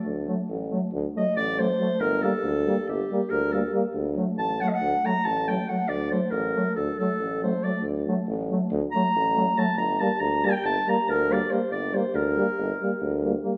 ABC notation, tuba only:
X:1
M:9/8
L:1/8
Q:3/8=93
K:none
V:1 name="Tuba" clef=bass
D,,2 A,,,2 D,, z A,,,3 | G,,,2 D,,2 G,,, z D,,3 | D,,2 A,,,2 D,, z A,,,3 | D,,2 A,,,2 D,, z A,,,3 |
D,,2 A,,,2 D,, z A,,,3 | G,,,2 D,,2 G,,, z D,,3 | G,,,2 D,,2 G,,, z D,,3 |]